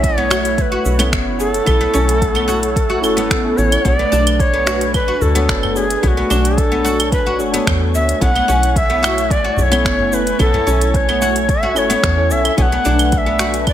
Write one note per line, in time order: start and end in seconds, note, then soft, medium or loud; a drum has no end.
0.00 0.79 B1 medium
0.00 8.18 A3 medium
0.00 0.16 C#4 medium
0.00 3.81 E4 medium
0.00 3.81 C#5 medium
0.00 0.58 C#5 loud
0.00 3.86 F#5 medium
0.00 kick loud
0.00 closed hi-hat soft
0.00 shaker soft
0.18 0.30 B3 medium
0.30 0.44 F#4 medium
0.30 finger snap medium
0.30 claves medium
0.30 shaker medium
0.45 closed hi-hat medium
0.45 shaker soft
0.58 1.12 B4 medium
0.58 0.63 C#5 medium
0.58 kick loud
0.58 closed hi-hat soft
0.58 shaker soft
0.72 0.98 F#4 medium
0.85 1.14 B1 medium
0.85 shaker medium
0.98 1.52 B3 loud
0.98 1.36 C#4 medium
0.98 1.36 E4 medium
0.98 1.36 A4 medium
0.98 1.37 C#5 loud
0.98 closed hi-hat medium
0.98 claves medium
0.98 shaker soft
1.12 1.60 F#1 loud
1.12 finger snap medium
1.12 kick loud
1.12 closed hi-hat soft
1.12 shaker soft
1.39 1.47 C#4 medium
1.39 1.47 E4 medium
1.39 1.51 G#4 loud
1.39 1.48 A4 medium
1.39 1.48 C#5 loud
1.39 shaker medium
1.51 2.99 A4 loud
1.51 closed hi-hat medium
1.51 shaker soft
1.65 1.86 B1 medium
1.65 1.79 B3 medium
1.65 1.79 C#4 medium
1.65 1.79 E4 medium
1.65 1.80 A4 medium
1.65 1.80 C#5 medium
1.65 kick loud
1.65 closed hi-hat soft
1.65 claves medium
1.65 shaker soft
1.81 1.93 B3 medium
1.94 3.05 B1 medium
1.94 2.34 C#4 medium
1.94 shaker medium
2.09 closed hi-hat medium
2.09 shaker soft
2.22 kick loud
2.22 closed hi-hat soft
2.22 shaker soft
2.35 2.48 B3 medium
2.35 claves medium
2.48 2.62 F#4 medium
2.48 shaker medium
2.63 closed hi-hat medium
2.63 shaker soft
2.76 kick loud
2.76 closed hi-hat soft
2.76 shaker soft
2.90 3.16 F#4 medium
3.02 3.47 F#1 medium
3.02 3.41 C#4 medium
3.02 3.41 E4 medium
3.02 3.59 A4 loud
3.02 3.41 A4 medium
3.02 3.42 C#5 loud
3.02 claves medium
3.02 shaker medium
3.17 3.70 B3 loud
3.17 closed hi-hat medium
3.17 shaker soft
3.31 finger snap medium
3.31 kick loud
3.31 closed hi-hat soft
3.31 shaker soft
3.44 3.54 A1 medium
3.44 3.54 C#4 medium
3.44 3.54 E4 medium
3.44 3.55 A4 medium
3.44 3.55 C#5 loud
3.57 3.77 A1 loud
3.57 3.68 C#4 medium
3.57 3.69 E4 medium
3.57 3.69 A4 medium
3.57 3.85 C#5 loud
3.57 3.69 C#5 medium
3.57 shaker medium
3.71 3.79 C#4 medium
3.71 3.79 E4 medium
3.71 3.79 A4 medium
3.71 3.80 C#5 medium
3.71 closed hi-hat medium
3.71 claves medium
3.71 shaker soft
3.84 4.04 B1 medium
3.84 3.98 B3 medium
3.84 3.93 D4 loud
3.84 8.17 D4 medium
3.84 3.93 F#4 medium
3.84 3.93 A4 medium
3.84 6.01 B4 medium
3.84 3.96 C#5 loud
3.84 3.94 C#5 loud
3.84 13.73 G#5 medium
3.84 kick loud
3.84 closed hi-hat soft
3.84 shaker soft
3.96 4.11 B3 medium
3.96 4.42 D5 loud
4.12 5.15 B1 medium
4.12 4.52 D4 medium
4.12 shaker medium
4.27 closed hi-hat medium
4.27 claves medium
4.27 shaker soft
4.39 4.94 C#5 loud
4.39 kick loud
4.39 closed hi-hat soft
4.39 shaker soft
4.54 4.66 B3 medium
4.67 4.80 F#4 medium
4.67 finger snap medium
4.67 shaker medium
4.81 closed hi-hat medium
4.81 shaker soft
4.94 5.23 B4 loud
4.94 kick loud
4.94 closed hi-hat soft
4.94 claves medium
4.94 shaker soft
5.08 5.34 F#4 medium
5.21 5.50 D2 medium
5.21 5.78 A4 medium
5.21 udu medium
5.21 shaker medium
5.35 5.88 B3 loud
5.35 5.72 D4 medium
5.35 5.73 F#4 medium
5.35 5.73 A4 medium
5.35 5.73 C#5 loud
5.35 closed hi-hat medium
5.35 shaker soft
5.49 5.97 F#1 loud
5.49 finger snap medium
5.49 kick loud
5.49 closed hi-hat soft
5.49 shaker soft
5.63 udu medium
5.63 claves medium
5.75 5.83 D4 medium
5.75 5.84 F#4 medium
5.75 6.03 G#4 loud
5.75 5.84 A4 medium
5.75 5.84 C#5 loud
5.75 shaker medium
5.90 closed hi-hat medium
5.90 shaker soft
6.02 6.22 B1 loud
6.02 6.16 B3 medium
6.02 6.15 D4 medium
6.02 6.16 F#4 medium
6.02 6.09 G#4 medium
6.02 6.16 A4 medium
6.02 12.53 C#5 medium
6.02 6.16 C#5 medium
6.02 kick loud
6.02 closed hi-hat soft
6.02 shaker soft
6.08 6.59 F#4 loud
6.17 6.29 B3 medium
6.30 7.42 B1 medium
6.30 6.70 D4 medium
6.30 claves medium
6.30 shaker medium
6.45 closed hi-hat medium
6.45 shaker soft
6.57 7.12 A4 loud
6.57 kick loud
6.57 closed hi-hat soft
6.57 shaker soft
6.72 6.84 B3 medium
6.85 6.98 F#4 medium
6.85 shaker medium
7.00 closed hi-hat medium
7.00 claves medium
7.00 shaker soft
7.12 7.38 B4 loud
7.12 kick loud
7.12 closed hi-hat soft
7.12 shaker soft
7.26 7.52 F#4 medium
7.38 7.59 F#1 medium
7.38 7.50 D4 medium
7.38 7.50 F#4 medium
7.38 7.50 A4 medium
7.38 7.51 C#5 medium
7.38 shaker medium
7.51 8.07 B3 loud
7.51 8.17 D4 medium
7.51 8.18 F#4 medium
7.51 8.19 A4 medium
7.51 closed hi-hat medium
7.51 shaker soft
7.56 8.19 C#5 loud
7.67 7.96 E2 medium
7.67 finger snap medium
7.67 kick loud
7.67 closed hi-hat soft
7.67 claves medium
7.67 shaker soft
7.95 8.13 D2 medium
7.95 8.23 E5 loud
7.95 shaker medium
8.09 closed hi-hat medium
8.09 shaker soft
8.20 8.40 B1 loud
8.20 13.73 A3 medium
8.20 8.34 B3 medium
8.20 8.29 C#4 medium
8.20 8.29 E4 medium
8.20 12.54 E4 medium
8.20 8.29 A4 medium
8.20 8.30 C#5 loud
8.20 8.79 F#5 loud
8.20 kick loud
8.20 closed hi-hat soft
8.20 shaker soft
8.35 8.47 B3 medium
8.35 claves medium
8.48 9.51 B1 medium
8.48 8.88 C#4 medium
8.48 shaker medium
8.63 closed hi-hat medium
8.63 shaker soft
8.76 9.33 E5 loud
8.76 kick loud
8.76 closed hi-hat soft
8.76 shaker soft
8.90 9.02 B3 medium
9.03 9.16 F#4 medium
9.03 finger snap medium
9.03 claves medium
9.03 shaker medium
9.18 closed hi-hat medium
9.18 shaker soft
9.30 9.59 D5 loud
9.30 kick loud
9.30 closed hi-hat soft
9.30 shaker soft
9.45 9.70 F#4 medium
9.57 9.87 B1 medium
9.57 9.64 D5 medium
9.57 udu medium
9.57 shaker medium
9.63 10.15 C#5 loud
9.70 10.25 B3 loud
9.70 10.08 C#4 medium
9.70 10.09 E4 medium
9.70 10.09 A4 medium
9.70 10.09 C#5 loud
9.70 closed hi-hat medium
9.70 claves medium
9.70 shaker soft
9.85 10.33 F#1 loud
9.85 finger snap medium
9.85 kick loud
9.85 closed hi-hat soft
9.85 shaker soft
9.99 udu medium
10.11 10.20 C#4 medium
10.11 10.20 E4 medium
10.11 10.20 A4 medium
10.11 10.40 B4 loud
10.11 10.21 C#5 medium
10.11 shaker medium
10.27 closed hi-hat medium
10.27 shaker soft
10.38 10.59 B1 loud
10.38 10.52 B3 medium
10.38 10.52 C#4 medium
10.38 10.52 E4 medium
10.38 10.52 A4 medium
10.38 10.97 A4 loud
10.38 10.53 C#5 medium
10.38 kick loud
10.38 closed hi-hat soft
10.38 claves medium
10.38 shaker soft
10.53 10.66 B3 medium
10.53 udu medium
10.67 11.78 B1 medium
10.67 11.07 C#4 medium
10.67 shaker medium
10.81 closed hi-hat medium
10.81 shaker soft
10.94 11.52 C#5 loud
10.94 kick loud
10.94 closed hi-hat soft
10.94 shaker soft
11.09 11.21 B3 medium
11.09 claves medium
11.22 11.35 F#4 medium
11.22 shaker medium
11.36 closed hi-hat medium
11.36 shaker soft
11.49 11.79 E5 loud
11.49 kick loud
11.49 closed hi-hat soft
11.49 shaker soft
11.63 11.89 F#4 medium
11.75 11.95 F#1 medium
11.75 12.13 C#4 loud
11.75 12.14 E4 medium
11.75 12.14 A4 medium
11.75 12.14 C#5 loud
11.75 12.33 C#5 loud
11.75 claves medium
11.75 shaker medium
11.90 12.43 B3 loud
11.90 closed hi-hat medium
11.90 shaker soft
12.03 12.32 E2 medium
12.03 finger snap medium
12.03 kick loud
12.03 closed hi-hat soft
12.03 shaker soft
12.16 12.27 C#4 medium
12.16 12.27 E4 medium
12.16 12.27 A4 medium
12.16 12.28 C#5 medium
12.29 12.50 B1 medium
12.29 12.41 C#4 medium
12.29 12.41 E4 medium
12.29 12.41 A4 medium
12.29 12.42 C#5 medium
12.29 12.58 E5 loud
12.29 shaker medium
12.43 12.51 C#4 medium
12.43 12.52 E4 medium
12.43 12.52 A4 medium
12.43 12.52 C#5 medium
12.43 closed hi-hat medium
12.43 claves medium
12.43 shaker soft
12.57 12.77 B1 loud
12.57 12.71 B3 medium
12.57 12.65 D4 loud
12.57 13.73 D4 medium
12.57 12.66 F#4 medium
12.57 12.66 A4 medium
12.57 13.73 B4 medium
12.57 12.66 C#5 loud
12.57 12.63 G#5 loud
12.57 kick loud
12.57 closed hi-hat soft
12.57 shaker soft
12.62 13.13 F#5 loud
12.72 12.84 B3 medium
12.85 13.73 B1 medium
12.85 13.25 D4 medium
12.85 shaker medium
12.99 closed hi-hat medium
12.99 claves medium
12.99 shaker soft
13.12 13.19 F#5 loud
13.12 kick loud
13.12 closed hi-hat soft
13.12 shaker soft
13.18 13.67 E5 loud
13.26 13.39 B3 medium
13.39 13.53 F#4 medium
13.39 finger snap medium
13.39 shaker medium
13.54 closed hi-hat medium
13.54 shaker soft
13.67 13.73 D5 medium
13.67 kick loud
13.67 closed hi-hat soft
13.67 claves medium
13.67 shaker soft